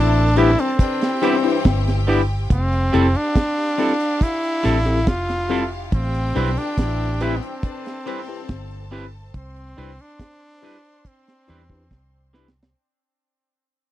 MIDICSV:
0, 0, Header, 1, 9, 480
1, 0, Start_track
1, 0, Key_signature, 0, "major"
1, 0, Tempo, 854701
1, 1406, Time_signature, 4, 2, 24, 8
1, 7816, End_track
2, 0, Start_track
2, 0, Title_t, "String section"
2, 0, Program_c, 0, 48
2, 0, Note_on_c, 0, 69, 88
2, 0, Note_on_c, 0, 81, 96
2, 426, Note_off_c, 0, 69, 0
2, 426, Note_off_c, 0, 81, 0
2, 444, Note_on_c, 0, 67, 85
2, 446, Note_on_c, 0, 79, 93
2, 1385, Note_off_c, 0, 67, 0
2, 1387, Note_off_c, 0, 79, 0
2, 1401, Note_on_c, 0, 67, 82
2, 1402, Note_on_c, 0, 77, 94
2, 3301, Note_off_c, 0, 67, 0
2, 3302, Note_off_c, 0, 77, 0
2, 3329, Note_on_c, 0, 67, 83
2, 3329, Note_on_c, 0, 79, 95
2, 4269, Note_off_c, 0, 67, 0
2, 4269, Note_off_c, 0, 79, 0
2, 4287, Note_on_c, 0, 69, 81
2, 4288, Note_on_c, 0, 81, 92
2, 5228, Note_off_c, 0, 69, 0
2, 5229, Note_off_c, 0, 81, 0
2, 5250, Note_on_c, 0, 72, 84
2, 5251, Note_on_c, 0, 84, 90
2, 7148, Note_off_c, 0, 72, 0
2, 7148, Note_off_c, 0, 84, 0
2, 7816, End_track
3, 0, Start_track
3, 0, Title_t, "Tine electric piano"
3, 0, Program_c, 1, 4
3, 208, Note_on_c, 1, 62, 97
3, 208, Note_on_c, 1, 64, 92
3, 209, Note_on_c, 1, 67, 91
3, 210, Note_on_c, 1, 71, 97
3, 281, Note_off_c, 1, 62, 0
3, 281, Note_off_c, 1, 64, 0
3, 282, Note_off_c, 1, 67, 0
3, 282, Note_off_c, 1, 71, 0
3, 684, Note_on_c, 1, 62, 82
3, 686, Note_on_c, 1, 67, 86
3, 688, Note_on_c, 1, 64, 77
3, 690, Note_on_c, 1, 71, 94
3, 759, Note_off_c, 1, 62, 0
3, 760, Note_off_c, 1, 67, 0
3, 761, Note_off_c, 1, 64, 0
3, 762, Note_off_c, 1, 71, 0
3, 808, Note_on_c, 1, 62, 82
3, 810, Note_on_c, 1, 64, 80
3, 811, Note_on_c, 1, 67, 79
3, 811, Note_on_c, 1, 71, 83
3, 879, Note_off_c, 1, 62, 0
3, 880, Note_off_c, 1, 64, 0
3, 881, Note_off_c, 1, 67, 0
3, 881, Note_off_c, 1, 71, 0
3, 1166, Note_on_c, 1, 62, 90
3, 1166, Note_on_c, 1, 64, 96
3, 1168, Note_on_c, 1, 67, 83
3, 1169, Note_on_c, 1, 71, 106
3, 1240, Note_off_c, 1, 62, 0
3, 1240, Note_off_c, 1, 64, 0
3, 1241, Note_off_c, 1, 67, 0
3, 1241, Note_off_c, 1, 71, 0
3, 1647, Note_on_c, 1, 60, 101
3, 1648, Note_on_c, 1, 64, 84
3, 1650, Note_on_c, 1, 67, 87
3, 1650, Note_on_c, 1, 69, 106
3, 1721, Note_off_c, 1, 60, 0
3, 1721, Note_off_c, 1, 64, 0
3, 1722, Note_off_c, 1, 67, 0
3, 1722, Note_off_c, 1, 69, 0
3, 2125, Note_on_c, 1, 60, 102
3, 2128, Note_on_c, 1, 64, 90
3, 2128, Note_on_c, 1, 67, 89
3, 2130, Note_on_c, 1, 69, 104
3, 2199, Note_off_c, 1, 60, 0
3, 2201, Note_off_c, 1, 64, 0
3, 2201, Note_off_c, 1, 67, 0
3, 2202, Note_off_c, 1, 69, 0
3, 2606, Note_on_c, 1, 60, 93
3, 2608, Note_on_c, 1, 64, 80
3, 2608, Note_on_c, 1, 67, 74
3, 2610, Note_on_c, 1, 69, 96
3, 2680, Note_off_c, 1, 60, 0
3, 2681, Note_off_c, 1, 64, 0
3, 2681, Note_off_c, 1, 67, 0
3, 2682, Note_off_c, 1, 69, 0
3, 2728, Note_on_c, 1, 60, 88
3, 2728, Note_on_c, 1, 64, 76
3, 2730, Note_on_c, 1, 67, 82
3, 2731, Note_on_c, 1, 69, 93
3, 2800, Note_off_c, 1, 60, 0
3, 2800, Note_off_c, 1, 64, 0
3, 2800, Note_off_c, 1, 67, 0
3, 2801, Note_off_c, 1, 69, 0
3, 3086, Note_on_c, 1, 60, 100
3, 3087, Note_on_c, 1, 64, 88
3, 3088, Note_on_c, 1, 67, 97
3, 3088, Note_on_c, 1, 69, 108
3, 3160, Note_off_c, 1, 60, 0
3, 3161, Note_off_c, 1, 64, 0
3, 3161, Note_off_c, 1, 67, 0
3, 3161, Note_off_c, 1, 69, 0
3, 3571, Note_on_c, 1, 60, 99
3, 3572, Note_on_c, 1, 64, 80
3, 3573, Note_on_c, 1, 67, 90
3, 3574, Note_on_c, 1, 71, 101
3, 3643, Note_off_c, 1, 60, 0
3, 3643, Note_off_c, 1, 64, 0
3, 3644, Note_off_c, 1, 67, 0
3, 3644, Note_off_c, 1, 71, 0
3, 4049, Note_on_c, 1, 60, 96
3, 4050, Note_on_c, 1, 64, 95
3, 4051, Note_on_c, 1, 67, 91
3, 4051, Note_on_c, 1, 71, 106
3, 4122, Note_off_c, 1, 60, 0
3, 4122, Note_off_c, 1, 64, 0
3, 4123, Note_off_c, 1, 67, 0
3, 4123, Note_off_c, 1, 71, 0
3, 4528, Note_on_c, 1, 60, 88
3, 4529, Note_on_c, 1, 64, 77
3, 4529, Note_on_c, 1, 67, 77
3, 4532, Note_on_c, 1, 71, 85
3, 4602, Note_off_c, 1, 60, 0
3, 4602, Note_off_c, 1, 64, 0
3, 4602, Note_off_c, 1, 67, 0
3, 4603, Note_off_c, 1, 71, 0
3, 4653, Note_on_c, 1, 60, 83
3, 4653, Note_on_c, 1, 64, 82
3, 4655, Note_on_c, 1, 67, 83
3, 4655, Note_on_c, 1, 71, 90
3, 4722, Note_off_c, 1, 64, 0
3, 4723, Note_off_c, 1, 60, 0
3, 4723, Note_off_c, 1, 67, 0
3, 4723, Note_off_c, 1, 71, 0
3, 5006, Note_on_c, 1, 60, 106
3, 5008, Note_on_c, 1, 64, 91
3, 5009, Note_on_c, 1, 67, 97
3, 5011, Note_on_c, 1, 71, 108
3, 5081, Note_off_c, 1, 60, 0
3, 5082, Note_off_c, 1, 64, 0
3, 5082, Note_off_c, 1, 67, 0
3, 5083, Note_off_c, 1, 71, 0
3, 5487, Note_on_c, 1, 62, 95
3, 5489, Note_on_c, 1, 64, 94
3, 5490, Note_on_c, 1, 67, 79
3, 5491, Note_on_c, 1, 71, 108
3, 5562, Note_off_c, 1, 62, 0
3, 5562, Note_off_c, 1, 64, 0
3, 5563, Note_off_c, 1, 67, 0
3, 5563, Note_off_c, 1, 71, 0
3, 5965, Note_on_c, 1, 62, 99
3, 5967, Note_on_c, 1, 64, 93
3, 5967, Note_on_c, 1, 67, 89
3, 5969, Note_on_c, 1, 71, 103
3, 6041, Note_off_c, 1, 62, 0
3, 6041, Note_off_c, 1, 64, 0
3, 6041, Note_off_c, 1, 67, 0
3, 6043, Note_off_c, 1, 71, 0
3, 6446, Note_on_c, 1, 62, 87
3, 6447, Note_on_c, 1, 64, 76
3, 6448, Note_on_c, 1, 67, 79
3, 6449, Note_on_c, 1, 71, 83
3, 6522, Note_off_c, 1, 62, 0
3, 6522, Note_off_c, 1, 64, 0
3, 6522, Note_off_c, 1, 67, 0
3, 6523, Note_off_c, 1, 71, 0
3, 6571, Note_on_c, 1, 62, 90
3, 6573, Note_on_c, 1, 64, 76
3, 6573, Note_on_c, 1, 67, 77
3, 6574, Note_on_c, 1, 71, 95
3, 6642, Note_off_c, 1, 62, 0
3, 6643, Note_off_c, 1, 64, 0
3, 6643, Note_off_c, 1, 67, 0
3, 6644, Note_off_c, 1, 71, 0
3, 6928, Note_on_c, 1, 62, 99
3, 6928, Note_on_c, 1, 67, 93
3, 6929, Note_on_c, 1, 64, 89
3, 6930, Note_on_c, 1, 71, 110
3, 7002, Note_off_c, 1, 62, 0
3, 7003, Note_off_c, 1, 64, 0
3, 7003, Note_off_c, 1, 67, 0
3, 7004, Note_off_c, 1, 71, 0
3, 7816, End_track
4, 0, Start_track
4, 0, Title_t, "Clean electric guitar"
4, 0, Program_c, 2, 27
4, 204, Note_on_c, 2, 55, 79
4, 208, Note_on_c, 2, 59, 74
4, 212, Note_on_c, 2, 64, 74
4, 214, Note_on_c, 2, 67, 88
4, 277, Note_off_c, 2, 55, 0
4, 279, Note_off_c, 2, 59, 0
4, 281, Note_off_c, 2, 64, 0
4, 282, Note_off_c, 2, 67, 0
4, 685, Note_on_c, 2, 55, 91
4, 688, Note_on_c, 2, 59, 84
4, 692, Note_on_c, 2, 64, 105
4, 696, Note_on_c, 2, 67, 104
4, 757, Note_off_c, 2, 55, 0
4, 759, Note_off_c, 2, 59, 0
4, 761, Note_off_c, 2, 64, 0
4, 762, Note_off_c, 2, 67, 0
4, 1163, Note_on_c, 2, 55, 85
4, 1167, Note_on_c, 2, 59, 89
4, 1171, Note_on_c, 2, 64, 87
4, 1174, Note_on_c, 2, 67, 107
4, 1236, Note_off_c, 2, 55, 0
4, 1238, Note_off_c, 2, 59, 0
4, 1240, Note_off_c, 2, 64, 0
4, 1242, Note_off_c, 2, 67, 0
4, 1644, Note_on_c, 2, 55, 96
4, 1645, Note_on_c, 2, 60, 106
4, 1650, Note_on_c, 2, 64, 114
4, 1653, Note_on_c, 2, 69, 107
4, 1717, Note_off_c, 2, 55, 0
4, 1717, Note_off_c, 2, 60, 0
4, 1720, Note_off_c, 2, 64, 0
4, 1721, Note_off_c, 2, 69, 0
4, 2122, Note_on_c, 2, 55, 73
4, 2126, Note_on_c, 2, 60, 71
4, 2129, Note_on_c, 2, 64, 75
4, 2132, Note_on_c, 2, 69, 75
4, 2196, Note_off_c, 2, 55, 0
4, 2198, Note_off_c, 2, 60, 0
4, 2199, Note_off_c, 2, 64, 0
4, 2201, Note_off_c, 2, 69, 0
4, 2602, Note_on_c, 2, 55, 93
4, 2605, Note_on_c, 2, 60, 87
4, 2610, Note_on_c, 2, 64, 95
4, 2611, Note_on_c, 2, 69, 101
4, 2676, Note_off_c, 2, 55, 0
4, 2677, Note_off_c, 2, 60, 0
4, 2680, Note_off_c, 2, 64, 0
4, 2680, Note_off_c, 2, 69, 0
4, 3087, Note_on_c, 2, 55, 89
4, 3091, Note_on_c, 2, 60, 97
4, 3093, Note_on_c, 2, 64, 95
4, 3096, Note_on_c, 2, 69, 102
4, 3158, Note_off_c, 2, 55, 0
4, 3160, Note_off_c, 2, 60, 0
4, 3161, Note_off_c, 2, 64, 0
4, 3163, Note_off_c, 2, 69, 0
4, 3566, Note_on_c, 2, 55, 97
4, 3570, Note_on_c, 2, 60, 107
4, 3573, Note_on_c, 2, 64, 99
4, 3577, Note_on_c, 2, 71, 119
4, 3638, Note_off_c, 2, 55, 0
4, 3640, Note_off_c, 2, 60, 0
4, 3642, Note_off_c, 2, 64, 0
4, 3643, Note_off_c, 2, 71, 0
4, 4048, Note_on_c, 2, 55, 77
4, 4051, Note_on_c, 2, 60, 89
4, 4054, Note_on_c, 2, 64, 94
4, 4057, Note_on_c, 2, 71, 96
4, 4119, Note_off_c, 2, 55, 0
4, 4121, Note_off_c, 2, 60, 0
4, 4122, Note_off_c, 2, 64, 0
4, 4123, Note_off_c, 2, 71, 0
4, 4526, Note_on_c, 2, 55, 87
4, 4531, Note_on_c, 2, 60, 80
4, 4535, Note_on_c, 2, 64, 105
4, 4537, Note_on_c, 2, 71, 108
4, 4598, Note_off_c, 2, 55, 0
4, 4601, Note_off_c, 2, 60, 0
4, 4603, Note_off_c, 2, 64, 0
4, 4604, Note_off_c, 2, 71, 0
4, 5004, Note_on_c, 2, 55, 93
4, 5009, Note_on_c, 2, 60, 105
4, 5013, Note_on_c, 2, 64, 95
4, 5016, Note_on_c, 2, 71, 105
4, 5078, Note_off_c, 2, 55, 0
4, 5080, Note_off_c, 2, 60, 0
4, 5082, Note_off_c, 2, 64, 0
4, 5083, Note_off_c, 2, 71, 0
4, 5487, Note_on_c, 2, 55, 96
4, 5491, Note_on_c, 2, 60, 100
4, 5494, Note_on_c, 2, 64, 112
4, 5497, Note_on_c, 2, 71, 99
4, 5559, Note_off_c, 2, 55, 0
4, 5561, Note_off_c, 2, 60, 0
4, 5563, Note_off_c, 2, 64, 0
4, 5564, Note_off_c, 2, 71, 0
4, 5968, Note_on_c, 2, 55, 80
4, 5972, Note_on_c, 2, 60, 77
4, 5976, Note_on_c, 2, 64, 74
4, 5979, Note_on_c, 2, 71, 85
4, 6040, Note_off_c, 2, 55, 0
4, 6042, Note_off_c, 2, 60, 0
4, 6044, Note_off_c, 2, 64, 0
4, 6045, Note_off_c, 2, 71, 0
4, 6448, Note_on_c, 2, 55, 91
4, 6451, Note_on_c, 2, 60, 102
4, 6455, Note_on_c, 2, 64, 101
4, 6458, Note_on_c, 2, 71, 96
4, 6520, Note_off_c, 2, 55, 0
4, 6522, Note_off_c, 2, 60, 0
4, 6524, Note_off_c, 2, 64, 0
4, 6525, Note_off_c, 2, 71, 0
4, 6926, Note_on_c, 2, 55, 82
4, 6929, Note_on_c, 2, 60, 86
4, 6932, Note_on_c, 2, 64, 88
4, 6934, Note_on_c, 2, 71, 96
4, 6999, Note_off_c, 2, 55, 0
4, 7001, Note_off_c, 2, 60, 0
4, 7002, Note_off_c, 2, 64, 0
4, 7003, Note_off_c, 2, 71, 0
4, 7816, End_track
5, 0, Start_track
5, 0, Title_t, "Flugelhorn"
5, 0, Program_c, 3, 56
5, 0, Note_on_c, 3, 62, 106
5, 214, Note_on_c, 3, 64, 108
5, 223, Note_off_c, 3, 62, 0
5, 339, Note_on_c, 3, 60, 88
5, 348, Note_off_c, 3, 64, 0
5, 1171, Note_off_c, 3, 60, 0
5, 1420, Note_on_c, 3, 60, 103
5, 1777, Note_on_c, 3, 62, 114
5, 1785, Note_off_c, 3, 60, 0
5, 2376, Note_on_c, 3, 64, 120
5, 2385, Note_off_c, 3, 62, 0
5, 2855, Note_on_c, 3, 65, 112
5, 2863, Note_off_c, 3, 64, 0
5, 3213, Note_off_c, 3, 65, 0
5, 3337, Note_on_c, 3, 60, 100
5, 3695, Note_on_c, 3, 62, 108
5, 3703, Note_off_c, 3, 60, 0
5, 4057, Note_on_c, 3, 64, 103
5, 4066, Note_off_c, 3, 62, 0
5, 4137, Note_on_c, 3, 59, 63
5, 4145, Note_off_c, 3, 64, 0
5, 4173, Note_on_c, 3, 60, 93
5, 4182, Note_off_c, 3, 59, 0
5, 5009, Note_off_c, 3, 60, 0
5, 5260, Note_on_c, 3, 60, 104
5, 5624, Note_on_c, 3, 62, 125
5, 5632, Note_off_c, 3, 60, 0
5, 6219, Note_on_c, 3, 60, 104
5, 6227, Note_off_c, 3, 62, 0
5, 6934, Note_off_c, 3, 60, 0
5, 7816, End_track
6, 0, Start_track
6, 0, Title_t, "Horn section"
6, 0, Program_c, 4, 61
6, 0, Note_on_c, 4, 48, 84
6, 0, Note_on_c, 4, 59, 75
6, 0, Note_on_c, 4, 64, 100
6, 160, Note_off_c, 4, 48, 0
6, 161, Note_off_c, 4, 59, 0
6, 161, Note_off_c, 4, 64, 0
6, 207, Note_on_c, 4, 43, 74
6, 208, Note_on_c, 4, 52, 69
6, 211, Note_on_c, 4, 60, 77
6, 398, Note_off_c, 4, 43, 0
6, 399, Note_off_c, 4, 52, 0
6, 401, Note_off_c, 4, 60, 0
6, 441, Note_on_c, 4, 50, 77
6, 441, Note_on_c, 4, 71, 73
6, 443, Note_on_c, 4, 62, 91
6, 635, Note_off_c, 4, 50, 0
6, 635, Note_off_c, 4, 71, 0
6, 636, Note_off_c, 4, 62, 0
6, 685, Note_on_c, 4, 43, 99
6, 686, Note_on_c, 4, 52, 95
6, 687, Note_on_c, 4, 60, 105
6, 1143, Note_off_c, 4, 43, 0
6, 1143, Note_off_c, 4, 52, 0
6, 1144, Note_off_c, 4, 60, 0
6, 3565, Note_on_c, 4, 62, 93
6, 3566, Note_on_c, 4, 50, 82
6, 3566, Note_on_c, 4, 59, 84
6, 3758, Note_off_c, 4, 50, 0
6, 3758, Note_off_c, 4, 59, 0
6, 3758, Note_off_c, 4, 62, 0
6, 3807, Note_on_c, 4, 48, 81
6, 3808, Note_on_c, 4, 59, 85
6, 3808, Note_on_c, 4, 64, 97
6, 3999, Note_off_c, 4, 48, 0
6, 3999, Note_off_c, 4, 59, 0
6, 3999, Note_off_c, 4, 64, 0
6, 4045, Note_on_c, 4, 52, 78
6, 4048, Note_on_c, 4, 60, 90
6, 4049, Note_on_c, 4, 43, 72
6, 4238, Note_off_c, 4, 52, 0
6, 4240, Note_off_c, 4, 43, 0
6, 4240, Note_off_c, 4, 60, 0
6, 4286, Note_on_c, 4, 71, 78
6, 4287, Note_on_c, 4, 50, 71
6, 4287, Note_on_c, 4, 62, 83
6, 4478, Note_off_c, 4, 71, 0
6, 4479, Note_off_c, 4, 50, 0
6, 4479, Note_off_c, 4, 62, 0
6, 4523, Note_on_c, 4, 60, 117
6, 4525, Note_on_c, 4, 43, 108
6, 4526, Note_on_c, 4, 52, 91
6, 4983, Note_off_c, 4, 60, 0
6, 4984, Note_off_c, 4, 43, 0
6, 4984, Note_off_c, 4, 52, 0
6, 7816, End_track
7, 0, Start_track
7, 0, Title_t, "Fingered electric bass"
7, 0, Program_c, 5, 33
7, 0, Note_on_c, 5, 33, 96
7, 306, Note_off_c, 5, 33, 0
7, 932, Note_on_c, 5, 31, 92
7, 1387, Note_off_c, 5, 31, 0
7, 1410, Note_on_c, 5, 29, 94
7, 1628, Note_off_c, 5, 29, 0
7, 1654, Note_on_c, 5, 29, 107
7, 1763, Note_off_c, 5, 29, 0
7, 2613, Note_on_c, 5, 33, 91
7, 2853, Note_off_c, 5, 33, 0
7, 2853, Note_on_c, 5, 29, 95
7, 3307, Note_off_c, 5, 29, 0
7, 3330, Note_on_c, 5, 33, 101
7, 3548, Note_off_c, 5, 33, 0
7, 3575, Note_on_c, 5, 35, 118
7, 3683, Note_off_c, 5, 35, 0
7, 3810, Note_on_c, 5, 33, 97
7, 4148, Note_off_c, 5, 33, 0
7, 4774, Note_on_c, 5, 31, 97
7, 5228, Note_off_c, 5, 31, 0
7, 5251, Note_on_c, 5, 36, 107
7, 5470, Note_off_c, 5, 36, 0
7, 5494, Note_on_c, 5, 36, 101
7, 5604, Note_off_c, 5, 36, 0
7, 6455, Note_on_c, 5, 40, 95
7, 6672, Note_off_c, 5, 40, 0
7, 6693, Note_on_c, 5, 36, 98
7, 7149, Note_off_c, 5, 36, 0
7, 7816, End_track
8, 0, Start_track
8, 0, Title_t, "Muted clean electric guitar strokes"
8, 807, Note_on_c, 9, 29, 53
8, 863, Note_off_c, 9, 29, 0
8, 2727, Note_on_c, 9, 29, 56
8, 2784, Note_off_c, 9, 29, 0
8, 4649, Note_on_c, 9, 29, 53
8, 4705, Note_off_c, 9, 29, 0
8, 6570, Note_on_c, 9, 29, 53
8, 6626, Note_off_c, 9, 29, 0
8, 7816, End_track
9, 0, Start_track
9, 0, Title_t, "Drums"
9, 204, Note_on_c, 9, 42, 75
9, 261, Note_off_c, 9, 42, 0
9, 330, Note_on_c, 9, 42, 60
9, 386, Note_off_c, 9, 42, 0
9, 445, Note_on_c, 9, 36, 103
9, 450, Note_on_c, 9, 42, 89
9, 501, Note_off_c, 9, 36, 0
9, 506, Note_off_c, 9, 42, 0
9, 570, Note_on_c, 9, 42, 59
9, 575, Note_on_c, 9, 38, 78
9, 626, Note_off_c, 9, 42, 0
9, 631, Note_off_c, 9, 38, 0
9, 689, Note_on_c, 9, 42, 75
9, 745, Note_off_c, 9, 42, 0
9, 925, Note_on_c, 9, 42, 84
9, 928, Note_on_c, 9, 36, 115
9, 930, Note_on_c, 9, 38, 127
9, 981, Note_off_c, 9, 42, 0
9, 984, Note_off_c, 9, 36, 0
9, 986, Note_off_c, 9, 38, 0
9, 1052, Note_on_c, 9, 42, 48
9, 1056, Note_on_c, 9, 38, 69
9, 1109, Note_off_c, 9, 42, 0
9, 1112, Note_off_c, 9, 38, 0
9, 1167, Note_on_c, 9, 46, 77
9, 1223, Note_off_c, 9, 46, 0
9, 1406, Note_on_c, 9, 36, 124
9, 1408, Note_on_c, 9, 42, 111
9, 1462, Note_off_c, 9, 36, 0
9, 1464, Note_off_c, 9, 42, 0
9, 1530, Note_on_c, 9, 42, 55
9, 1586, Note_off_c, 9, 42, 0
9, 1649, Note_on_c, 9, 42, 84
9, 1705, Note_off_c, 9, 42, 0
9, 1769, Note_on_c, 9, 42, 55
9, 1825, Note_off_c, 9, 42, 0
9, 1884, Note_on_c, 9, 36, 117
9, 1884, Note_on_c, 9, 42, 101
9, 1890, Note_on_c, 9, 38, 115
9, 1940, Note_off_c, 9, 36, 0
9, 1940, Note_off_c, 9, 42, 0
9, 1946, Note_off_c, 9, 38, 0
9, 2124, Note_on_c, 9, 42, 80
9, 2181, Note_off_c, 9, 42, 0
9, 2248, Note_on_c, 9, 42, 64
9, 2305, Note_off_c, 9, 42, 0
9, 2364, Note_on_c, 9, 36, 112
9, 2369, Note_on_c, 9, 42, 91
9, 2421, Note_off_c, 9, 36, 0
9, 2425, Note_off_c, 9, 42, 0
9, 2491, Note_on_c, 9, 42, 53
9, 2547, Note_off_c, 9, 42, 0
9, 2609, Note_on_c, 9, 42, 82
9, 2665, Note_off_c, 9, 42, 0
9, 2845, Note_on_c, 9, 42, 98
9, 2848, Note_on_c, 9, 36, 127
9, 2851, Note_on_c, 9, 38, 127
9, 2901, Note_off_c, 9, 42, 0
9, 2904, Note_off_c, 9, 36, 0
9, 2907, Note_off_c, 9, 38, 0
9, 2970, Note_on_c, 9, 42, 50
9, 2974, Note_on_c, 9, 38, 65
9, 3026, Note_off_c, 9, 42, 0
9, 3030, Note_off_c, 9, 38, 0
9, 3086, Note_on_c, 9, 46, 81
9, 3142, Note_off_c, 9, 46, 0
9, 3326, Note_on_c, 9, 36, 127
9, 3326, Note_on_c, 9, 42, 104
9, 3382, Note_off_c, 9, 36, 0
9, 3383, Note_off_c, 9, 42, 0
9, 3450, Note_on_c, 9, 42, 56
9, 3506, Note_off_c, 9, 42, 0
9, 3569, Note_on_c, 9, 42, 79
9, 3625, Note_off_c, 9, 42, 0
9, 3690, Note_on_c, 9, 42, 60
9, 3746, Note_off_c, 9, 42, 0
9, 3806, Note_on_c, 9, 36, 116
9, 3807, Note_on_c, 9, 42, 109
9, 3812, Note_on_c, 9, 38, 127
9, 3862, Note_off_c, 9, 36, 0
9, 3863, Note_off_c, 9, 42, 0
9, 3869, Note_off_c, 9, 38, 0
9, 4047, Note_on_c, 9, 42, 89
9, 4103, Note_off_c, 9, 42, 0
9, 4170, Note_on_c, 9, 42, 61
9, 4226, Note_off_c, 9, 42, 0
9, 4286, Note_on_c, 9, 36, 119
9, 4290, Note_on_c, 9, 42, 90
9, 4342, Note_off_c, 9, 36, 0
9, 4346, Note_off_c, 9, 42, 0
9, 4413, Note_on_c, 9, 42, 55
9, 4418, Note_on_c, 9, 38, 79
9, 4470, Note_off_c, 9, 42, 0
9, 4475, Note_off_c, 9, 38, 0
9, 4531, Note_on_c, 9, 42, 77
9, 4587, Note_off_c, 9, 42, 0
9, 4766, Note_on_c, 9, 42, 91
9, 4769, Note_on_c, 9, 36, 125
9, 4771, Note_on_c, 9, 38, 127
9, 4822, Note_off_c, 9, 42, 0
9, 4825, Note_off_c, 9, 36, 0
9, 4827, Note_off_c, 9, 38, 0
9, 4891, Note_on_c, 9, 42, 47
9, 4947, Note_off_c, 9, 42, 0
9, 5006, Note_on_c, 9, 46, 75
9, 5062, Note_off_c, 9, 46, 0
9, 5247, Note_on_c, 9, 36, 117
9, 5247, Note_on_c, 9, 42, 113
9, 5303, Note_off_c, 9, 36, 0
9, 5304, Note_off_c, 9, 42, 0
9, 5371, Note_on_c, 9, 42, 49
9, 5427, Note_off_c, 9, 42, 0
9, 5493, Note_on_c, 9, 42, 78
9, 5549, Note_off_c, 9, 42, 0
9, 5609, Note_on_c, 9, 42, 57
9, 5665, Note_off_c, 9, 42, 0
9, 5726, Note_on_c, 9, 36, 122
9, 5727, Note_on_c, 9, 42, 110
9, 5732, Note_on_c, 9, 38, 127
9, 5782, Note_off_c, 9, 36, 0
9, 5783, Note_off_c, 9, 42, 0
9, 5789, Note_off_c, 9, 38, 0
9, 5965, Note_on_c, 9, 42, 76
9, 6022, Note_off_c, 9, 42, 0
9, 6091, Note_on_c, 9, 42, 61
9, 6147, Note_off_c, 9, 42, 0
9, 6205, Note_on_c, 9, 36, 108
9, 6208, Note_on_c, 9, 42, 95
9, 6261, Note_off_c, 9, 36, 0
9, 6264, Note_off_c, 9, 42, 0
9, 6331, Note_on_c, 9, 42, 53
9, 6336, Note_on_c, 9, 38, 75
9, 6387, Note_off_c, 9, 42, 0
9, 6392, Note_off_c, 9, 38, 0
9, 6449, Note_on_c, 9, 42, 73
9, 6505, Note_off_c, 9, 42, 0
9, 6569, Note_on_c, 9, 36, 100
9, 6625, Note_off_c, 9, 36, 0
9, 6688, Note_on_c, 9, 36, 115
9, 6691, Note_on_c, 9, 38, 66
9, 6744, Note_off_c, 9, 36, 0
9, 6747, Note_off_c, 9, 38, 0
9, 6931, Note_on_c, 9, 38, 86
9, 6987, Note_off_c, 9, 38, 0
9, 7011, Note_on_c, 9, 38, 100
9, 7067, Note_off_c, 9, 38, 0
9, 7091, Note_on_c, 9, 38, 106
9, 7147, Note_off_c, 9, 38, 0
9, 7816, End_track
0, 0, End_of_file